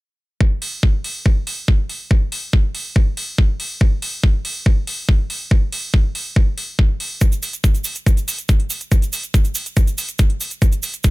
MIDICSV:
0, 0, Header, 1, 2, 480
1, 0, Start_track
1, 0, Tempo, 425532
1, 457, Time_signature, 4, 2, 24, 8
1, 12525, End_track
2, 0, Start_track
2, 0, Title_t, "Drums"
2, 457, Note_on_c, 9, 36, 110
2, 570, Note_off_c, 9, 36, 0
2, 697, Note_on_c, 9, 46, 101
2, 810, Note_off_c, 9, 46, 0
2, 937, Note_on_c, 9, 36, 115
2, 1050, Note_off_c, 9, 36, 0
2, 1177, Note_on_c, 9, 46, 89
2, 1290, Note_off_c, 9, 46, 0
2, 1417, Note_on_c, 9, 36, 111
2, 1530, Note_off_c, 9, 36, 0
2, 1657, Note_on_c, 9, 46, 100
2, 1770, Note_off_c, 9, 46, 0
2, 1897, Note_on_c, 9, 36, 114
2, 2010, Note_off_c, 9, 36, 0
2, 2137, Note_on_c, 9, 46, 85
2, 2250, Note_off_c, 9, 46, 0
2, 2377, Note_on_c, 9, 36, 117
2, 2490, Note_off_c, 9, 36, 0
2, 2617, Note_on_c, 9, 46, 103
2, 2730, Note_off_c, 9, 46, 0
2, 2857, Note_on_c, 9, 36, 116
2, 2970, Note_off_c, 9, 36, 0
2, 3097, Note_on_c, 9, 46, 93
2, 3210, Note_off_c, 9, 46, 0
2, 3337, Note_on_c, 9, 36, 122
2, 3450, Note_off_c, 9, 36, 0
2, 3577, Note_on_c, 9, 46, 108
2, 3690, Note_off_c, 9, 46, 0
2, 3817, Note_on_c, 9, 36, 118
2, 3930, Note_off_c, 9, 36, 0
2, 4057, Note_on_c, 9, 46, 91
2, 4170, Note_off_c, 9, 46, 0
2, 4297, Note_on_c, 9, 36, 115
2, 4410, Note_off_c, 9, 36, 0
2, 4537, Note_on_c, 9, 46, 106
2, 4650, Note_off_c, 9, 46, 0
2, 4777, Note_on_c, 9, 36, 120
2, 4890, Note_off_c, 9, 36, 0
2, 5017, Note_on_c, 9, 46, 98
2, 5130, Note_off_c, 9, 46, 0
2, 5257, Note_on_c, 9, 36, 120
2, 5370, Note_off_c, 9, 36, 0
2, 5497, Note_on_c, 9, 46, 110
2, 5610, Note_off_c, 9, 46, 0
2, 5737, Note_on_c, 9, 36, 122
2, 5850, Note_off_c, 9, 36, 0
2, 5977, Note_on_c, 9, 46, 93
2, 6090, Note_off_c, 9, 46, 0
2, 6217, Note_on_c, 9, 36, 117
2, 6330, Note_off_c, 9, 36, 0
2, 6457, Note_on_c, 9, 46, 106
2, 6570, Note_off_c, 9, 46, 0
2, 6697, Note_on_c, 9, 36, 116
2, 6810, Note_off_c, 9, 36, 0
2, 6937, Note_on_c, 9, 46, 94
2, 7050, Note_off_c, 9, 46, 0
2, 7177, Note_on_c, 9, 36, 123
2, 7290, Note_off_c, 9, 36, 0
2, 7417, Note_on_c, 9, 46, 107
2, 7530, Note_off_c, 9, 46, 0
2, 7657, Note_on_c, 9, 36, 119
2, 7770, Note_off_c, 9, 36, 0
2, 7897, Note_on_c, 9, 46, 91
2, 8009, Note_off_c, 9, 46, 0
2, 8133, Note_on_c, 9, 82, 51
2, 8137, Note_on_c, 9, 36, 114
2, 8137, Note_on_c, 9, 42, 77
2, 8246, Note_off_c, 9, 82, 0
2, 8250, Note_off_c, 9, 36, 0
2, 8250, Note_off_c, 9, 42, 0
2, 8257, Note_on_c, 9, 42, 49
2, 8260, Note_on_c, 9, 82, 39
2, 8370, Note_off_c, 9, 42, 0
2, 8373, Note_off_c, 9, 82, 0
2, 8377, Note_on_c, 9, 46, 105
2, 8377, Note_on_c, 9, 82, 89
2, 8490, Note_off_c, 9, 46, 0
2, 8490, Note_off_c, 9, 82, 0
2, 8497, Note_on_c, 9, 42, 48
2, 8500, Note_on_c, 9, 82, 35
2, 8610, Note_off_c, 9, 42, 0
2, 8613, Note_off_c, 9, 82, 0
2, 8617, Note_on_c, 9, 36, 113
2, 8617, Note_on_c, 9, 42, 73
2, 8617, Note_on_c, 9, 82, 48
2, 8730, Note_off_c, 9, 36, 0
2, 8730, Note_off_c, 9, 42, 0
2, 8730, Note_off_c, 9, 82, 0
2, 8737, Note_on_c, 9, 42, 49
2, 8739, Note_on_c, 9, 82, 38
2, 8846, Note_off_c, 9, 82, 0
2, 8846, Note_on_c, 9, 82, 94
2, 8850, Note_off_c, 9, 42, 0
2, 8857, Note_on_c, 9, 46, 90
2, 8959, Note_off_c, 9, 82, 0
2, 8969, Note_on_c, 9, 82, 41
2, 8970, Note_off_c, 9, 46, 0
2, 8977, Note_on_c, 9, 42, 52
2, 9081, Note_off_c, 9, 82, 0
2, 9090, Note_off_c, 9, 42, 0
2, 9097, Note_on_c, 9, 36, 119
2, 9097, Note_on_c, 9, 42, 75
2, 9104, Note_on_c, 9, 82, 50
2, 9210, Note_off_c, 9, 36, 0
2, 9210, Note_off_c, 9, 42, 0
2, 9217, Note_off_c, 9, 82, 0
2, 9217, Note_on_c, 9, 42, 50
2, 9225, Note_on_c, 9, 82, 36
2, 9330, Note_off_c, 9, 42, 0
2, 9337, Note_off_c, 9, 82, 0
2, 9337, Note_on_c, 9, 46, 103
2, 9343, Note_on_c, 9, 82, 86
2, 9450, Note_off_c, 9, 46, 0
2, 9456, Note_off_c, 9, 82, 0
2, 9457, Note_on_c, 9, 42, 51
2, 9457, Note_on_c, 9, 82, 41
2, 9570, Note_off_c, 9, 42, 0
2, 9570, Note_off_c, 9, 82, 0
2, 9572, Note_on_c, 9, 82, 51
2, 9577, Note_on_c, 9, 36, 118
2, 9577, Note_on_c, 9, 42, 74
2, 9685, Note_off_c, 9, 82, 0
2, 9690, Note_off_c, 9, 36, 0
2, 9690, Note_off_c, 9, 42, 0
2, 9697, Note_on_c, 9, 42, 51
2, 9810, Note_off_c, 9, 42, 0
2, 9813, Note_on_c, 9, 82, 99
2, 9817, Note_on_c, 9, 46, 88
2, 9926, Note_off_c, 9, 82, 0
2, 9930, Note_off_c, 9, 46, 0
2, 9932, Note_on_c, 9, 82, 35
2, 9937, Note_on_c, 9, 42, 51
2, 10045, Note_off_c, 9, 82, 0
2, 10050, Note_off_c, 9, 42, 0
2, 10057, Note_on_c, 9, 36, 110
2, 10057, Note_on_c, 9, 42, 78
2, 10057, Note_on_c, 9, 82, 47
2, 10170, Note_off_c, 9, 36, 0
2, 10170, Note_off_c, 9, 42, 0
2, 10170, Note_off_c, 9, 82, 0
2, 10177, Note_on_c, 9, 42, 51
2, 10187, Note_on_c, 9, 82, 37
2, 10290, Note_off_c, 9, 42, 0
2, 10295, Note_off_c, 9, 82, 0
2, 10295, Note_on_c, 9, 82, 85
2, 10297, Note_on_c, 9, 46, 103
2, 10408, Note_off_c, 9, 82, 0
2, 10410, Note_off_c, 9, 46, 0
2, 10417, Note_on_c, 9, 42, 52
2, 10421, Note_on_c, 9, 82, 33
2, 10530, Note_off_c, 9, 42, 0
2, 10534, Note_off_c, 9, 82, 0
2, 10537, Note_on_c, 9, 36, 108
2, 10537, Note_on_c, 9, 42, 76
2, 10539, Note_on_c, 9, 82, 47
2, 10650, Note_off_c, 9, 36, 0
2, 10650, Note_off_c, 9, 42, 0
2, 10651, Note_off_c, 9, 82, 0
2, 10656, Note_on_c, 9, 82, 35
2, 10657, Note_on_c, 9, 42, 51
2, 10768, Note_off_c, 9, 82, 0
2, 10770, Note_off_c, 9, 42, 0
2, 10770, Note_on_c, 9, 82, 96
2, 10777, Note_on_c, 9, 46, 87
2, 10883, Note_off_c, 9, 82, 0
2, 10890, Note_off_c, 9, 46, 0
2, 10897, Note_on_c, 9, 42, 51
2, 10898, Note_on_c, 9, 82, 37
2, 11010, Note_off_c, 9, 42, 0
2, 11011, Note_off_c, 9, 82, 0
2, 11015, Note_on_c, 9, 82, 48
2, 11017, Note_on_c, 9, 36, 116
2, 11017, Note_on_c, 9, 42, 76
2, 11128, Note_off_c, 9, 82, 0
2, 11130, Note_off_c, 9, 36, 0
2, 11130, Note_off_c, 9, 42, 0
2, 11137, Note_on_c, 9, 42, 53
2, 11140, Note_on_c, 9, 82, 32
2, 11250, Note_off_c, 9, 42, 0
2, 11253, Note_off_c, 9, 82, 0
2, 11256, Note_on_c, 9, 82, 79
2, 11257, Note_on_c, 9, 46, 101
2, 11368, Note_off_c, 9, 82, 0
2, 11370, Note_off_c, 9, 46, 0
2, 11375, Note_on_c, 9, 82, 36
2, 11377, Note_on_c, 9, 42, 52
2, 11488, Note_off_c, 9, 82, 0
2, 11490, Note_off_c, 9, 42, 0
2, 11490, Note_on_c, 9, 82, 52
2, 11497, Note_on_c, 9, 36, 110
2, 11497, Note_on_c, 9, 42, 77
2, 11603, Note_off_c, 9, 82, 0
2, 11610, Note_off_c, 9, 36, 0
2, 11610, Note_off_c, 9, 42, 0
2, 11617, Note_on_c, 9, 42, 51
2, 11730, Note_off_c, 9, 42, 0
2, 11737, Note_on_c, 9, 46, 84
2, 11738, Note_on_c, 9, 82, 82
2, 11850, Note_off_c, 9, 46, 0
2, 11851, Note_off_c, 9, 82, 0
2, 11853, Note_on_c, 9, 82, 40
2, 11857, Note_on_c, 9, 42, 51
2, 11965, Note_off_c, 9, 82, 0
2, 11970, Note_off_c, 9, 42, 0
2, 11977, Note_on_c, 9, 36, 109
2, 11977, Note_on_c, 9, 42, 81
2, 11979, Note_on_c, 9, 82, 44
2, 12090, Note_off_c, 9, 36, 0
2, 12090, Note_off_c, 9, 42, 0
2, 12092, Note_off_c, 9, 82, 0
2, 12095, Note_on_c, 9, 82, 37
2, 12097, Note_on_c, 9, 42, 54
2, 12208, Note_off_c, 9, 82, 0
2, 12210, Note_off_c, 9, 42, 0
2, 12213, Note_on_c, 9, 82, 81
2, 12217, Note_on_c, 9, 46, 97
2, 12325, Note_off_c, 9, 82, 0
2, 12330, Note_off_c, 9, 46, 0
2, 12334, Note_on_c, 9, 82, 33
2, 12337, Note_on_c, 9, 42, 52
2, 12447, Note_off_c, 9, 82, 0
2, 12448, Note_on_c, 9, 82, 47
2, 12450, Note_off_c, 9, 42, 0
2, 12457, Note_on_c, 9, 36, 109
2, 12457, Note_on_c, 9, 42, 78
2, 12525, Note_off_c, 9, 36, 0
2, 12525, Note_off_c, 9, 42, 0
2, 12525, Note_off_c, 9, 82, 0
2, 12525, End_track
0, 0, End_of_file